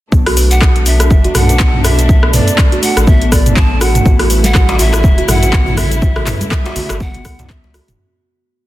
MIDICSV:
0, 0, Header, 1, 7, 480
1, 0, Start_track
1, 0, Key_signature, 2, "minor"
1, 0, Tempo, 491803
1, 117, Time_signature, 4, 2, 24, 8
1, 8461, End_track
2, 0, Start_track
2, 0, Title_t, "Pan flute"
2, 0, Program_c, 0, 75
2, 498, Note_on_c, 0, 78, 106
2, 839, Note_on_c, 0, 76, 99
2, 854, Note_off_c, 0, 78, 0
2, 1321, Note_on_c, 0, 78, 102
2, 1336, Note_off_c, 0, 76, 0
2, 1797, Note_on_c, 0, 76, 100
2, 1811, Note_off_c, 0, 78, 0
2, 2283, Note_on_c, 0, 74, 96
2, 2298, Note_off_c, 0, 76, 0
2, 2758, Note_off_c, 0, 74, 0
2, 2764, Note_on_c, 0, 78, 91
2, 2948, Note_off_c, 0, 78, 0
2, 2948, Note_on_c, 0, 78, 68
2, 3002, Note_on_c, 0, 76, 97
2, 3017, Note_off_c, 0, 78, 0
2, 3246, Note_on_c, 0, 74, 90
2, 3261, Note_off_c, 0, 76, 0
2, 3485, Note_on_c, 0, 81, 102
2, 3500, Note_off_c, 0, 74, 0
2, 3725, Note_on_c, 0, 78, 89
2, 3739, Note_off_c, 0, 81, 0
2, 4071, Note_off_c, 0, 78, 0
2, 4345, Note_on_c, 0, 78, 124
2, 4683, Note_on_c, 0, 76, 110
2, 4697, Note_off_c, 0, 78, 0
2, 5160, Note_off_c, 0, 76, 0
2, 5164, Note_on_c, 0, 78, 116
2, 5641, Note_on_c, 0, 76, 112
2, 5655, Note_off_c, 0, 78, 0
2, 6349, Note_off_c, 0, 76, 0
2, 6355, Note_on_c, 0, 76, 98
2, 6836, Note_on_c, 0, 78, 110
2, 6851, Note_off_c, 0, 76, 0
2, 7315, Note_on_c, 0, 76, 91
2, 7330, Note_off_c, 0, 78, 0
2, 7694, Note_off_c, 0, 76, 0
2, 8461, End_track
3, 0, Start_track
3, 0, Title_t, "Kalimba"
3, 0, Program_c, 1, 108
3, 119, Note_on_c, 1, 59, 81
3, 242, Note_off_c, 1, 59, 0
3, 257, Note_on_c, 1, 66, 97
3, 348, Note_off_c, 1, 66, 0
3, 362, Note_on_c, 1, 71, 79
3, 490, Note_off_c, 1, 71, 0
3, 1216, Note_on_c, 1, 66, 103
3, 1307, Note_off_c, 1, 66, 0
3, 1460, Note_on_c, 1, 71, 74
3, 1513, Note_off_c, 1, 71, 0
3, 1559, Note_on_c, 1, 59, 82
3, 1682, Note_off_c, 1, 59, 0
3, 2281, Note_on_c, 1, 71, 77
3, 2353, Note_off_c, 1, 71, 0
3, 2657, Note_on_c, 1, 66, 99
3, 2753, Note_off_c, 1, 66, 0
3, 2760, Note_on_c, 1, 57, 100
3, 2882, Note_off_c, 1, 57, 0
3, 3003, Note_on_c, 1, 59, 106
3, 3074, Note_off_c, 1, 59, 0
3, 3142, Note_on_c, 1, 59, 80
3, 3233, Note_off_c, 1, 59, 0
3, 3244, Note_on_c, 1, 59, 81
3, 3364, Note_off_c, 1, 59, 0
3, 3722, Note_on_c, 1, 66, 107
3, 3843, Note_off_c, 1, 66, 0
3, 3963, Note_on_c, 1, 59, 85
3, 4084, Note_off_c, 1, 59, 0
3, 4098, Note_on_c, 1, 66, 106
3, 4188, Note_off_c, 1, 66, 0
3, 4200, Note_on_c, 1, 71, 80
3, 4329, Note_off_c, 1, 71, 0
3, 4440, Note_on_c, 1, 66, 85
3, 4569, Note_off_c, 1, 66, 0
3, 5056, Note_on_c, 1, 66, 107
3, 5147, Note_off_c, 1, 66, 0
3, 5294, Note_on_c, 1, 71, 76
3, 5350, Note_off_c, 1, 71, 0
3, 5400, Note_on_c, 1, 59, 84
3, 5522, Note_off_c, 1, 59, 0
3, 6120, Note_on_c, 1, 71, 76
3, 6193, Note_off_c, 1, 71, 0
3, 6496, Note_on_c, 1, 66, 101
3, 6592, Note_off_c, 1, 66, 0
3, 6598, Note_on_c, 1, 57, 102
3, 6721, Note_off_c, 1, 57, 0
3, 6837, Note_on_c, 1, 59, 107
3, 6911, Note_off_c, 1, 59, 0
3, 6976, Note_on_c, 1, 59, 82
3, 7066, Note_off_c, 1, 59, 0
3, 7557, Note_on_c, 1, 66, 107
3, 7681, Note_off_c, 1, 66, 0
3, 8461, End_track
4, 0, Start_track
4, 0, Title_t, "String section"
4, 0, Program_c, 2, 48
4, 117, Note_on_c, 2, 47, 79
4, 117, Note_on_c, 2, 57, 72
4, 120, Note_on_c, 2, 62, 85
4, 3919, Note_off_c, 2, 47, 0
4, 3920, Note_off_c, 2, 62, 0
4, 3955, Note_on_c, 2, 64, 90
4, 3957, Note_on_c, 2, 49, 85
4, 7758, Note_off_c, 2, 49, 0
4, 7758, Note_off_c, 2, 57, 0
4, 7758, Note_off_c, 2, 64, 0
4, 8461, End_track
5, 0, Start_track
5, 0, Title_t, "Sub bass"
5, 0, Program_c, 3, 38
5, 120, Note_on_c, 3, 35, 102
5, 1079, Note_on_c, 3, 30, 77
5, 1094, Note_off_c, 3, 35, 0
5, 1251, Note_off_c, 3, 30, 0
5, 1319, Note_on_c, 3, 35, 80
5, 2343, Note_off_c, 3, 35, 0
5, 2895, Note_on_c, 3, 33, 90
5, 3904, Note_off_c, 3, 33, 0
5, 3959, Note_on_c, 3, 33, 103
5, 4918, Note_on_c, 3, 28, 76
5, 4933, Note_off_c, 3, 33, 0
5, 5091, Note_off_c, 3, 28, 0
5, 5153, Note_on_c, 3, 33, 83
5, 6180, Note_off_c, 3, 33, 0
5, 6734, Note_on_c, 3, 31, 94
5, 7070, Note_off_c, 3, 31, 0
5, 7076, Note_on_c, 3, 37, 88
5, 7622, Note_off_c, 3, 37, 0
5, 7696, Note_on_c, 3, 28, 87
5, 7764, Note_off_c, 3, 28, 0
5, 8461, End_track
6, 0, Start_track
6, 0, Title_t, "Djembe"
6, 3958, Note_on_c, 9, 63, 69
6, 4056, Note_off_c, 9, 63, 0
6, 4093, Note_on_c, 9, 63, 101
6, 4190, Note_off_c, 9, 63, 0
6, 4576, Note_on_c, 9, 62, 126
6, 4674, Note_off_c, 9, 62, 0
6, 4677, Note_on_c, 9, 64, 93
6, 4775, Note_off_c, 9, 64, 0
6, 4808, Note_on_c, 9, 62, 98
6, 4906, Note_off_c, 9, 62, 0
6, 5300, Note_on_c, 9, 63, 65
6, 5398, Note_off_c, 9, 63, 0
6, 5524, Note_on_c, 9, 64, 90
6, 5622, Note_off_c, 9, 64, 0
6, 5874, Note_on_c, 9, 63, 64
6, 5972, Note_off_c, 9, 63, 0
6, 6009, Note_on_c, 9, 63, 94
6, 6107, Note_off_c, 9, 63, 0
6, 6124, Note_on_c, 9, 63, 61
6, 6222, Note_off_c, 9, 63, 0
6, 6501, Note_on_c, 9, 62, 115
6, 6598, Note_off_c, 9, 62, 0
6, 6599, Note_on_c, 9, 64, 96
6, 6697, Note_off_c, 9, 64, 0
6, 6726, Note_on_c, 9, 62, 108
6, 6824, Note_off_c, 9, 62, 0
6, 6981, Note_on_c, 9, 63, 74
6, 7079, Note_off_c, 9, 63, 0
6, 7218, Note_on_c, 9, 62, 86
6, 7315, Note_off_c, 9, 62, 0
6, 7457, Note_on_c, 9, 62, 83
6, 7554, Note_off_c, 9, 62, 0
6, 7566, Note_on_c, 9, 63, 89
6, 7663, Note_off_c, 9, 63, 0
6, 8461, End_track
7, 0, Start_track
7, 0, Title_t, "Drums"
7, 119, Note_on_c, 9, 36, 115
7, 123, Note_on_c, 9, 82, 39
7, 217, Note_off_c, 9, 36, 0
7, 221, Note_off_c, 9, 82, 0
7, 258, Note_on_c, 9, 37, 95
7, 258, Note_on_c, 9, 46, 53
7, 356, Note_off_c, 9, 37, 0
7, 356, Note_off_c, 9, 46, 0
7, 361, Note_on_c, 9, 46, 94
7, 362, Note_on_c, 9, 82, 97
7, 458, Note_off_c, 9, 46, 0
7, 460, Note_off_c, 9, 82, 0
7, 498, Note_on_c, 9, 42, 55
7, 499, Note_on_c, 9, 82, 55
7, 595, Note_off_c, 9, 42, 0
7, 597, Note_off_c, 9, 82, 0
7, 600, Note_on_c, 9, 36, 118
7, 603, Note_on_c, 9, 37, 78
7, 603, Note_on_c, 9, 39, 95
7, 604, Note_on_c, 9, 82, 39
7, 698, Note_off_c, 9, 36, 0
7, 700, Note_off_c, 9, 37, 0
7, 700, Note_off_c, 9, 39, 0
7, 702, Note_off_c, 9, 82, 0
7, 739, Note_on_c, 9, 42, 47
7, 836, Note_off_c, 9, 42, 0
7, 839, Note_on_c, 9, 46, 89
7, 841, Note_on_c, 9, 82, 92
7, 937, Note_off_c, 9, 46, 0
7, 938, Note_off_c, 9, 82, 0
7, 976, Note_on_c, 9, 37, 91
7, 976, Note_on_c, 9, 42, 56
7, 978, Note_on_c, 9, 82, 51
7, 1074, Note_off_c, 9, 37, 0
7, 1074, Note_off_c, 9, 42, 0
7, 1075, Note_off_c, 9, 82, 0
7, 1079, Note_on_c, 9, 36, 113
7, 1080, Note_on_c, 9, 82, 40
7, 1177, Note_off_c, 9, 36, 0
7, 1177, Note_off_c, 9, 82, 0
7, 1214, Note_on_c, 9, 42, 45
7, 1312, Note_off_c, 9, 42, 0
7, 1317, Note_on_c, 9, 37, 80
7, 1317, Note_on_c, 9, 45, 76
7, 1317, Note_on_c, 9, 46, 89
7, 1318, Note_on_c, 9, 82, 88
7, 1414, Note_off_c, 9, 37, 0
7, 1414, Note_off_c, 9, 45, 0
7, 1414, Note_off_c, 9, 46, 0
7, 1416, Note_off_c, 9, 82, 0
7, 1457, Note_on_c, 9, 42, 51
7, 1458, Note_on_c, 9, 82, 51
7, 1554, Note_off_c, 9, 42, 0
7, 1556, Note_off_c, 9, 82, 0
7, 1558, Note_on_c, 9, 39, 92
7, 1559, Note_on_c, 9, 82, 38
7, 1560, Note_on_c, 9, 36, 120
7, 1655, Note_off_c, 9, 39, 0
7, 1657, Note_off_c, 9, 82, 0
7, 1658, Note_off_c, 9, 36, 0
7, 1696, Note_on_c, 9, 45, 82
7, 1793, Note_off_c, 9, 45, 0
7, 1800, Note_on_c, 9, 37, 93
7, 1800, Note_on_c, 9, 46, 95
7, 1802, Note_on_c, 9, 82, 93
7, 1898, Note_off_c, 9, 37, 0
7, 1898, Note_off_c, 9, 46, 0
7, 1900, Note_off_c, 9, 82, 0
7, 1939, Note_on_c, 9, 42, 56
7, 1940, Note_on_c, 9, 82, 54
7, 2037, Note_off_c, 9, 42, 0
7, 2038, Note_off_c, 9, 82, 0
7, 2041, Note_on_c, 9, 36, 122
7, 2042, Note_on_c, 9, 82, 42
7, 2138, Note_off_c, 9, 36, 0
7, 2139, Note_off_c, 9, 82, 0
7, 2176, Note_on_c, 9, 37, 93
7, 2273, Note_off_c, 9, 37, 0
7, 2279, Note_on_c, 9, 45, 79
7, 2279, Note_on_c, 9, 46, 91
7, 2281, Note_on_c, 9, 82, 93
7, 2377, Note_off_c, 9, 45, 0
7, 2377, Note_off_c, 9, 46, 0
7, 2378, Note_off_c, 9, 82, 0
7, 2416, Note_on_c, 9, 42, 53
7, 2418, Note_on_c, 9, 82, 54
7, 2514, Note_off_c, 9, 42, 0
7, 2516, Note_off_c, 9, 82, 0
7, 2520, Note_on_c, 9, 36, 126
7, 2520, Note_on_c, 9, 37, 84
7, 2520, Note_on_c, 9, 39, 91
7, 2522, Note_on_c, 9, 82, 39
7, 2618, Note_off_c, 9, 36, 0
7, 2618, Note_off_c, 9, 37, 0
7, 2618, Note_off_c, 9, 39, 0
7, 2619, Note_off_c, 9, 82, 0
7, 2657, Note_on_c, 9, 42, 46
7, 2755, Note_off_c, 9, 42, 0
7, 2760, Note_on_c, 9, 46, 95
7, 2761, Note_on_c, 9, 82, 100
7, 2857, Note_off_c, 9, 46, 0
7, 2859, Note_off_c, 9, 82, 0
7, 2898, Note_on_c, 9, 37, 90
7, 2898, Note_on_c, 9, 42, 53
7, 2900, Note_on_c, 9, 82, 53
7, 2996, Note_off_c, 9, 37, 0
7, 2996, Note_off_c, 9, 42, 0
7, 2997, Note_off_c, 9, 82, 0
7, 3000, Note_on_c, 9, 36, 122
7, 3000, Note_on_c, 9, 82, 42
7, 3097, Note_off_c, 9, 82, 0
7, 3098, Note_off_c, 9, 36, 0
7, 3138, Note_on_c, 9, 42, 45
7, 3236, Note_off_c, 9, 42, 0
7, 3241, Note_on_c, 9, 36, 65
7, 3241, Note_on_c, 9, 37, 84
7, 3241, Note_on_c, 9, 46, 90
7, 3243, Note_on_c, 9, 82, 94
7, 3338, Note_off_c, 9, 36, 0
7, 3339, Note_off_c, 9, 37, 0
7, 3339, Note_off_c, 9, 46, 0
7, 3340, Note_off_c, 9, 82, 0
7, 3379, Note_on_c, 9, 42, 53
7, 3379, Note_on_c, 9, 45, 80
7, 3380, Note_on_c, 9, 82, 53
7, 3477, Note_off_c, 9, 42, 0
7, 3477, Note_off_c, 9, 45, 0
7, 3478, Note_off_c, 9, 82, 0
7, 3480, Note_on_c, 9, 36, 127
7, 3481, Note_on_c, 9, 39, 93
7, 3483, Note_on_c, 9, 82, 39
7, 3577, Note_off_c, 9, 36, 0
7, 3579, Note_off_c, 9, 39, 0
7, 3580, Note_off_c, 9, 82, 0
7, 3720, Note_on_c, 9, 37, 96
7, 3720, Note_on_c, 9, 46, 85
7, 3722, Note_on_c, 9, 82, 94
7, 3818, Note_off_c, 9, 37, 0
7, 3818, Note_off_c, 9, 46, 0
7, 3819, Note_off_c, 9, 82, 0
7, 3857, Note_on_c, 9, 42, 54
7, 3857, Note_on_c, 9, 45, 80
7, 3858, Note_on_c, 9, 82, 55
7, 3954, Note_off_c, 9, 42, 0
7, 3954, Note_off_c, 9, 45, 0
7, 3956, Note_off_c, 9, 82, 0
7, 3959, Note_on_c, 9, 36, 125
7, 3960, Note_on_c, 9, 82, 41
7, 4056, Note_off_c, 9, 36, 0
7, 4058, Note_off_c, 9, 82, 0
7, 4094, Note_on_c, 9, 37, 90
7, 4094, Note_on_c, 9, 46, 52
7, 4192, Note_off_c, 9, 37, 0
7, 4192, Note_off_c, 9, 46, 0
7, 4197, Note_on_c, 9, 46, 87
7, 4198, Note_on_c, 9, 82, 99
7, 4200, Note_on_c, 9, 62, 48
7, 4294, Note_off_c, 9, 46, 0
7, 4296, Note_off_c, 9, 82, 0
7, 4298, Note_off_c, 9, 62, 0
7, 4334, Note_on_c, 9, 42, 56
7, 4335, Note_on_c, 9, 63, 115
7, 4336, Note_on_c, 9, 82, 57
7, 4432, Note_off_c, 9, 42, 0
7, 4432, Note_off_c, 9, 63, 0
7, 4434, Note_off_c, 9, 82, 0
7, 4437, Note_on_c, 9, 37, 76
7, 4437, Note_on_c, 9, 39, 98
7, 4438, Note_on_c, 9, 36, 124
7, 4438, Note_on_c, 9, 63, 92
7, 4439, Note_on_c, 9, 82, 43
7, 4535, Note_off_c, 9, 37, 0
7, 4535, Note_off_c, 9, 39, 0
7, 4535, Note_off_c, 9, 63, 0
7, 4536, Note_off_c, 9, 36, 0
7, 4536, Note_off_c, 9, 82, 0
7, 4575, Note_on_c, 9, 42, 45
7, 4671, Note_on_c, 9, 62, 41
7, 4672, Note_off_c, 9, 42, 0
7, 4677, Note_on_c, 9, 46, 85
7, 4679, Note_on_c, 9, 82, 97
7, 4768, Note_off_c, 9, 62, 0
7, 4775, Note_off_c, 9, 46, 0
7, 4777, Note_off_c, 9, 82, 0
7, 4817, Note_on_c, 9, 37, 95
7, 4817, Note_on_c, 9, 42, 54
7, 4818, Note_on_c, 9, 82, 56
7, 4909, Note_on_c, 9, 63, 68
7, 4914, Note_off_c, 9, 37, 0
7, 4914, Note_off_c, 9, 42, 0
7, 4916, Note_off_c, 9, 82, 0
7, 4918, Note_on_c, 9, 36, 119
7, 4921, Note_on_c, 9, 82, 44
7, 5007, Note_off_c, 9, 63, 0
7, 5015, Note_off_c, 9, 36, 0
7, 5018, Note_off_c, 9, 82, 0
7, 5055, Note_on_c, 9, 42, 43
7, 5059, Note_on_c, 9, 62, 58
7, 5153, Note_off_c, 9, 42, 0
7, 5156, Note_on_c, 9, 63, 70
7, 5157, Note_off_c, 9, 62, 0
7, 5159, Note_on_c, 9, 37, 82
7, 5159, Note_on_c, 9, 45, 79
7, 5159, Note_on_c, 9, 46, 86
7, 5160, Note_on_c, 9, 82, 97
7, 5253, Note_off_c, 9, 63, 0
7, 5256, Note_off_c, 9, 37, 0
7, 5256, Note_off_c, 9, 45, 0
7, 5256, Note_off_c, 9, 46, 0
7, 5258, Note_off_c, 9, 82, 0
7, 5296, Note_on_c, 9, 42, 54
7, 5297, Note_on_c, 9, 82, 54
7, 5392, Note_on_c, 9, 62, 41
7, 5393, Note_off_c, 9, 42, 0
7, 5395, Note_off_c, 9, 82, 0
7, 5397, Note_on_c, 9, 36, 127
7, 5399, Note_on_c, 9, 39, 100
7, 5400, Note_on_c, 9, 82, 39
7, 5490, Note_off_c, 9, 62, 0
7, 5495, Note_off_c, 9, 36, 0
7, 5496, Note_off_c, 9, 39, 0
7, 5498, Note_off_c, 9, 82, 0
7, 5534, Note_on_c, 9, 45, 85
7, 5631, Note_on_c, 9, 63, 71
7, 5632, Note_off_c, 9, 45, 0
7, 5633, Note_on_c, 9, 64, 93
7, 5636, Note_on_c, 9, 37, 97
7, 5636, Note_on_c, 9, 46, 90
7, 5638, Note_on_c, 9, 82, 93
7, 5729, Note_off_c, 9, 63, 0
7, 5730, Note_off_c, 9, 64, 0
7, 5734, Note_off_c, 9, 37, 0
7, 5734, Note_off_c, 9, 46, 0
7, 5735, Note_off_c, 9, 82, 0
7, 5769, Note_on_c, 9, 62, 55
7, 5773, Note_on_c, 9, 42, 53
7, 5775, Note_on_c, 9, 82, 57
7, 5866, Note_off_c, 9, 62, 0
7, 5870, Note_off_c, 9, 42, 0
7, 5872, Note_off_c, 9, 82, 0
7, 5877, Note_on_c, 9, 36, 127
7, 5877, Note_on_c, 9, 82, 43
7, 5975, Note_off_c, 9, 36, 0
7, 5975, Note_off_c, 9, 82, 0
7, 6014, Note_on_c, 9, 37, 90
7, 6111, Note_off_c, 9, 37, 0
7, 6114, Note_on_c, 9, 62, 51
7, 6116, Note_on_c, 9, 39, 53
7, 6116, Note_on_c, 9, 45, 84
7, 6116, Note_on_c, 9, 46, 84
7, 6118, Note_on_c, 9, 82, 95
7, 6212, Note_off_c, 9, 62, 0
7, 6214, Note_off_c, 9, 39, 0
7, 6214, Note_off_c, 9, 45, 0
7, 6214, Note_off_c, 9, 46, 0
7, 6216, Note_off_c, 9, 82, 0
7, 6255, Note_on_c, 9, 63, 113
7, 6257, Note_on_c, 9, 42, 55
7, 6258, Note_on_c, 9, 82, 56
7, 6348, Note_off_c, 9, 63, 0
7, 6348, Note_on_c, 9, 63, 104
7, 6354, Note_off_c, 9, 42, 0
7, 6356, Note_off_c, 9, 82, 0
7, 6358, Note_on_c, 9, 36, 123
7, 6359, Note_on_c, 9, 37, 81
7, 6359, Note_on_c, 9, 39, 103
7, 6360, Note_on_c, 9, 82, 41
7, 6446, Note_off_c, 9, 63, 0
7, 6456, Note_off_c, 9, 36, 0
7, 6456, Note_off_c, 9, 37, 0
7, 6456, Note_off_c, 9, 39, 0
7, 6458, Note_off_c, 9, 82, 0
7, 6496, Note_on_c, 9, 42, 44
7, 6593, Note_off_c, 9, 42, 0
7, 6596, Note_on_c, 9, 62, 37
7, 6597, Note_on_c, 9, 46, 86
7, 6598, Note_on_c, 9, 82, 99
7, 6600, Note_on_c, 9, 64, 83
7, 6694, Note_off_c, 9, 46, 0
7, 6694, Note_off_c, 9, 62, 0
7, 6696, Note_off_c, 9, 82, 0
7, 6698, Note_off_c, 9, 64, 0
7, 6734, Note_on_c, 9, 37, 93
7, 6734, Note_on_c, 9, 42, 55
7, 6735, Note_on_c, 9, 82, 56
7, 6831, Note_off_c, 9, 37, 0
7, 6831, Note_off_c, 9, 42, 0
7, 6833, Note_off_c, 9, 82, 0
7, 6834, Note_on_c, 9, 63, 64
7, 6837, Note_on_c, 9, 36, 118
7, 6837, Note_on_c, 9, 82, 43
7, 6932, Note_off_c, 9, 63, 0
7, 6935, Note_off_c, 9, 36, 0
7, 6935, Note_off_c, 9, 82, 0
7, 6967, Note_on_c, 9, 62, 58
7, 6973, Note_on_c, 9, 42, 46
7, 6976, Note_on_c, 9, 64, 83
7, 7064, Note_off_c, 9, 62, 0
7, 7071, Note_off_c, 9, 42, 0
7, 7073, Note_off_c, 9, 64, 0
7, 7076, Note_on_c, 9, 37, 76
7, 7076, Note_on_c, 9, 46, 83
7, 7077, Note_on_c, 9, 36, 64
7, 7077, Note_on_c, 9, 82, 97
7, 7173, Note_off_c, 9, 37, 0
7, 7173, Note_off_c, 9, 46, 0
7, 7174, Note_off_c, 9, 36, 0
7, 7175, Note_off_c, 9, 82, 0
7, 7213, Note_on_c, 9, 42, 55
7, 7213, Note_on_c, 9, 45, 83
7, 7215, Note_on_c, 9, 82, 54
7, 7311, Note_off_c, 9, 42, 0
7, 7311, Note_off_c, 9, 45, 0
7, 7312, Note_off_c, 9, 82, 0
7, 7317, Note_on_c, 9, 36, 126
7, 7318, Note_on_c, 9, 39, 98
7, 7318, Note_on_c, 9, 62, 41
7, 7319, Note_on_c, 9, 82, 41
7, 7415, Note_off_c, 9, 36, 0
7, 7415, Note_off_c, 9, 39, 0
7, 7415, Note_off_c, 9, 62, 0
7, 7417, Note_off_c, 9, 82, 0
7, 7454, Note_on_c, 9, 63, 72
7, 7551, Note_off_c, 9, 63, 0
7, 7556, Note_on_c, 9, 37, 89
7, 7556, Note_on_c, 9, 46, 84
7, 7558, Note_on_c, 9, 82, 89
7, 7654, Note_off_c, 9, 37, 0
7, 7654, Note_off_c, 9, 46, 0
7, 7656, Note_off_c, 9, 82, 0
7, 7694, Note_on_c, 9, 42, 56
7, 7694, Note_on_c, 9, 45, 90
7, 7695, Note_on_c, 9, 82, 56
7, 7698, Note_on_c, 9, 62, 52
7, 7792, Note_off_c, 9, 42, 0
7, 7792, Note_off_c, 9, 45, 0
7, 7793, Note_off_c, 9, 82, 0
7, 7795, Note_off_c, 9, 62, 0
7, 8461, End_track
0, 0, End_of_file